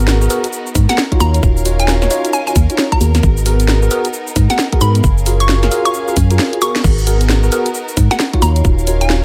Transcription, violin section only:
0, 0, Header, 1, 2, 480
1, 0, Start_track
1, 0, Tempo, 451128
1, 1520, Time_signature, 4, 2, 24, 8
1, 9837, End_track
2, 0, Start_track
2, 0, Title_t, "Violin section"
2, 0, Program_c, 0, 48
2, 0, Note_on_c, 0, 59, 80
2, 0, Note_on_c, 0, 63, 75
2, 0, Note_on_c, 0, 66, 77
2, 0, Note_on_c, 0, 70, 86
2, 1264, Note_off_c, 0, 59, 0
2, 1264, Note_off_c, 0, 63, 0
2, 1264, Note_off_c, 0, 66, 0
2, 1281, Note_on_c, 0, 77, 69
2, 1282, Note_on_c, 0, 61, 79
2, 3419, Note_off_c, 0, 77, 0
2, 3420, Note_off_c, 0, 61, 0
2, 3439, Note_on_c, 0, 59, 81
2, 3439, Note_on_c, 0, 63, 76
2, 5341, Note_off_c, 0, 59, 0
2, 5341, Note_off_c, 0, 63, 0
2, 5361, Note_on_c, 0, 61, 79
2, 5361, Note_on_c, 0, 77, 76
2, 5362, Note_on_c, 0, 68, 77
2, 7239, Note_off_c, 0, 70, 0
2, 7262, Note_off_c, 0, 61, 0
2, 7262, Note_off_c, 0, 68, 0
2, 7262, Note_off_c, 0, 77, 0
2, 7281, Note_on_c, 0, 59, 83
2, 7281, Note_on_c, 0, 63, 71
2, 7281, Note_on_c, 0, 66, 76
2, 7281, Note_on_c, 0, 70, 92
2, 8944, Note_off_c, 0, 59, 0
2, 8944, Note_off_c, 0, 63, 0
2, 8944, Note_off_c, 0, 66, 0
2, 8944, Note_off_c, 0, 70, 0
2, 8961, Note_on_c, 0, 61, 78
2, 8961, Note_on_c, 0, 77, 72
2, 8962, Note_on_c, 0, 70, 90
2, 9837, Note_off_c, 0, 61, 0
2, 9837, Note_off_c, 0, 70, 0
2, 9837, Note_off_c, 0, 77, 0
2, 9837, End_track
0, 0, End_of_file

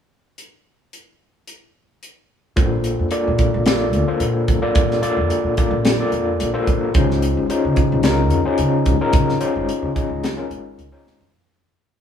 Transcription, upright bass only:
0, 0, Header, 1, 3, 480
1, 0, Start_track
1, 0, Key_signature, -2, "major"
1, 0, Tempo, 547945
1, 328, Time_signature, 4, 2, 24, 8
1, 10518, End_track
2, 0, Start_track
2, 0, Title_t, "Upright bass"
2, 0, Program_c, 0, 32
2, 2246, Note_on_c, 0, 34, 90
2, 2568, Note_off_c, 0, 34, 0
2, 2622, Note_on_c, 0, 41, 79
2, 2720, Note_off_c, 0, 41, 0
2, 2869, Note_on_c, 0, 46, 93
2, 3103, Note_on_c, 0, 34, 97
2, 3116, Note_off_c, 0, 46, 0
2, 3442, Note_off_c, 0, 34, 0
2, 3442, Note_on_c, 0, 38, 77
2, 3557, Note_off_c, 0, 38, 0
2, 3677, Note_on_c, 0, 46, 98
2, 3893, Note_off_c, 0, 46, 0
2, 3926, Note_on_c, 0, 34, 88
2, 4039, Note_off_c, 0, 34, 0
2, 4166, Note_on_c, 0, 46, 86
2, 4378, Note_off_c, 0, 46, 0
2, 4526, Note_on_c, 0, 41, 85
2, 4631, Note_off_c, 0, 41, 0
2, 4764, Note_on_c, 0, 46, 74
2, 4870, Note_off_c, 0, 46, 0
2, 4999, Note_on_c, 0, 34, 100
2, 5217, Note_off_c, 0, 34, 0
2, 5359, Note_on_c, 0, 41, 88
2, 5574, Note_off_c, 0, 41, 0
2, 5608, Note_on_c, 0, 34, 94
2, 5719, Note_off_c, 0, 34, 0
2, 5847, Note_on_c, 0, 34, 74
2, 6058, Note_off_c, 0, 34, 0
2, 6085, Note_on_c, 0, 37, 93
2, 6407, Note_off_c, 0, 37, 0
2, 6457, Note_on_c, 0, 32, 85
2, 6555, Note_off_c, 0, 32, 0
2, 6699, Note_on_c, 0, 49, 92
2, 6938, Note_on_c, 0, 37, 99
2, 6951, Note_off_c, 0, 49, 0
2, 7281, Note_off_c, 0, 37, 0
2, 7281, Note_on_c, 0, 41, 79
2, 7395, Note_off_c, 0, 41, 0
2, 7521, Note_on_c, 0, 49, 95
2, 7733, Note_off_c, 0, 49, 0
2, 7765, Note_on_c, 0, 37, 92
2, 7877, Note_off_c, 0, 37, 0
2, 8001, Note_on_c, 0, 49, 87
2, 8213, Note_off_c, 0, 49, 0
2, 8370, Note_on_c, 0, 32, 92
2, 8470, Note_off_c, 0, 32, 0
2, 8607, Note_on_c, 0, 49, 82
2, 8709, Note_off_c, 0, 49, 0
2, 8842, Note_on_c, 0, 37, 92
2, 9056, Note_off_c, 0, 37, 0
2, 9198, Note_on_c, 0, 32, 88
2, 9411, Note_off_c, 0, 32, 0
2, 9443, Note_on_c, 0, 37, 89
2, 9555, Note_off_c, 0, 37, 0
2, 9683, Note_on_c, 0, 32, 75
2, 9894, Note_off_c, 0, 32, 0
2, 10518, End_track
3, 0, Start_track
3, 0, Title_t, "Muted upright bass strokes"
3, 4050, Note_on_c, 9, 29, 32
3, 4138, Note_off_c, 9, 29, 0
3, 4401, Note_on_c, 9, 29, 34
3, 4489, Note_off_c, 9, 29, 0
3, 4643, Note_on_c, 9, 29, 36
3, 4731, Note_off_c, 9, 29, 0
3, 7415, Note_on_c, 9, 29, 39
3, 7503, Note_off_c, 9, 29, 0
3, 7898, Note_on_c, 9, 29, 38
3, 7986, Note_off_c, 9, 29, 0
3, 8242, Note_on_c, 9, 29, 36
3, 8330, Note_off_c, 9, 29, 0
3, 8484, Note_on_c, 9, 29, 38
3, 8571, Note_off_c, 9, 29, 0
3, 10518, End_track
0, 0, End_of_file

